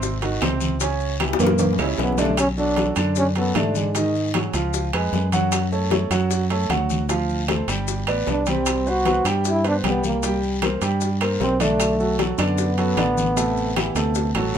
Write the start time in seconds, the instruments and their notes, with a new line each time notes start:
Already playing: fingered electric bass G#1, grand piano C3 C4 C5
0.02 high bongo, high conga, long guiro, maracas
0.22 grand piano D#3 D#4 F#4, high bongo, high conga, high timbale, maracas
0.41 fingered electric bass C#2, grand piano C3 C4 C5, high bongo, low bongo, high conga, high timbale, low timbale, short guiro, claves, maracas
0.61 high bongo, high conga, short guiro, maracas
0.80 grand piano C#3 C#4 C#5, high bongo, high conga, high timbale, long guiro, maracas
1.00 high conga, maracas
1.19 grand piano E3 E4 G4, high bongo, high conga, high timbale, short guiro, claves, maracas
1.33 high bongo
1.39 fingered electric bass F#2, grand piano A#2 A#3 A#4, high conga, high timbale, short guiro, maracas
1.47 high bongo
1.58 high conga, high timbale, long guiro, maracas
1.73 low bongo
1.78 fingered electric bass C#2, grand piano C#3 C#4 E4, low timbale, claves, maracas
1.98 fingered electric bass B1, trombone B3, low bongo, low conga, low timbale, short guiro, maracas
2.12 low bongo
2.18 grand piano D3 D4 D5, trombone A3, low conga, low timbale, short guiro, maracas
2.25 low bongo
2.37 trombone C#4, high bongo, high conga, high timbale, long guiro, claves, maracas
2.57 grand piano F#3 F#4 A4, trombone D4, high conga, maracas
2.76 grand piano F#3 F#4 A4, high bongo, high conga, high timbale, short guiro, maracas
2.96 fingered electric bass F#2, grand piano D3 D4 D5, high bongo, high conga, high timbale, short guiro, claves, maracas
3.16 trombone C#4, high bongo, long guiro, maracas
3.35 grand piano F#3 F#4 A4, trombone B3, high bongo, high conga, high timbale, maracas
3.55 fingered electric bass G#2, grand piano D3 D4 D5, trombone A3, high bongo, low bongo, high conga, high timbale, low timbale, short guiro, claves, maracas
3.75 trombone G#3, high bongo, high conga, short guiro, maracas
3.95 grand piano D#3 D#4 D#5, high bongo, high conga, high timbale, long guiro, maracas
4.15 high conga, maracas
4.34 grand piano F#3 F#4 G#4, high bongo, high conga, high timbale, short guiro, claves, maracas
4.54 fingered electric bass C#2, grand piano F3 F4 F5, high bongo, high conga, high timbale, short guiro, maracas
4.74 high bongo, high conga, long guiro, maracas
4.93 fingered electric bass F2, grand piano G#3 G#4 B4, high bongo, high conga, high timbale, claves, maracas
5.12 fingered electric bass F#2, high bongo, low bongo, high conga, short guiro, maracas
5.32 grand piano F#3 F#4 F#5, high bongo, high conga, high timbale, short guiro, maracas
5.52 high bongo, high conga, high timbale, long guiro, claves, maracas
5.72 grand piano A3 A4 C#5, maracas
5.91 grand piano A3 A4 C#5, high bongo, high conga, high timbale, short guiro, maracas
6.10 fingered electric bass F#2, grand piano F#3 F#4 F#5, high bongo, high conga, high timbale, short guiro, claves, maracas
6.30 high bongo, long guiro, maracas
6.50 grand piano A3 A4 C#5, high bongo, high conga, high timbale, maracas
6.69 fingered electric bass D2, grand piano F#3 F#4 F#5, high bongo, low bongo, high conga, high timbale, short guiro, claves, maracas
6.89 high bongo, high conga, short guiro, maracas
7.09 grand piano F3 F4 F5, high bongo, high conga, high timbale, long guiro, maracas
7.29 high conga, maracas
7.48 grand piano A3 A4 C5, high bongo, high conga, high timbale, short guiro, claves, maracas
7.68 fingered electric bass G1, grand piano G3 G4 G5, high bongo, high conga, high timbale, short guiro, maracas
7.88 high bongo, high conga, long guiro, maracas
8.07 fingered electric bass A1, grand piano B3 B4 D5, high bongo, high conga, high timbale, claves, maracas
8.27 fingered electric bass C2, trombone D4, high bongo, low bongo, high conga, low timbale, short guiro, maracas
8.46 grand piano G3 G4 G5, trombone C4, high bongo, high conga, high timbale, short guiro, maracas
8.66 high bongo, high conga, high timbale, long guiro, claves, maracas
8.86 grand piano B3 B4 C5, trombone F#4, high conga, maracas
9.05 grand piano B3 B4 C5, high bongo, high conga, high timbale, short guiro, maracas
9.25 fingered electric bass G2, grand piano G3 G4 G5, high bongo, high conga, high timbale, short guiro, claves, maracas
9.45 high bongo, high conga, long guiro, maracas
9.49 trombone E4
9.64 grand piano B3 B4 C5, trombone D4, high bongo, high conga, high timbale, maracas
9.84 fingered electric bass C2, grand piano G3 G4 G5, trombone B3, high bongo, low bongo, high conga, high timbale, low timbale, short guiro, claves, maracas
10.03 trombone A#3, high bongo, high conga, short guiro, maracas
10.23 grand piano G3 G4 G5, high bongo, high conga, high timbale, long guiro, maracas
10.43 high conga, maracas
10.62 grand piano A#3 A#4 C5, high bongo, high conga, high timbale, short guiro, claves, maracas
10.81 fingered electric bass G2, grand piano G3 G4 G5, high bongo, high conga, high timbale, short guiro, maracas
11.01 high bongo, high conga, long guiro, maracas
11.21 grand piano A#3 A#4 C5, high bongo, high conga, high timbale, claves, maracas
11.40 fingered electric bass B1, trombone C4, high bongo, low bongo, low timbale, short guiro, maracas
11.60 grand piano D3 D4 D5, trombone A3, high bongo, high conga, high timbale, short guiro, maracas
11.80 high bongo, high conga, high timbale, long guiro, claves, maracas
12.00 grand piano F#3 F#4 A4, maracas
12.19 grand piano F#3 F#4 A4, high bongo, high conga, high timbale, short guiro, maracas
12.38 fingered electric bass F#2, grand piano D3 D4 D5, trombone B3, high bongo, high conga, high timbale, short guiro, claves, maracas
12.58 high bongo, long guiro, maracas
12.78 grand piano F#3 F#4 A4, high bongo, high conga, high timbale, maracas
12.97 fingered electric bass A1, grand piano D3 D4 D5, high bongo, low bongo, high conga, high timbale, short guiro, claves, maracas
13.17 high bongo, high conga, short guiro, maracas
13.37 grand piano C3 A3 A4, high bongo, high conga, high timbale, long guiro, maracas
13.56 high conga, maracas
13.76 grand piano E3 E4 G4, high bongo, high conga, high timbale, short guiro, claves, maracas
13.95 fingered electric bass D2, grand piano C3 A3 A4, high bongo, high timbale, short guiro, maracas
14.15 high bongo, long guiro, maracas
14.34 fingered electric bass A1, grand piano F#3 F#4 A4, high bongo, low conga, high timbale, claves, maracas
14.54 fingered electric bass G1, short guiro, maracas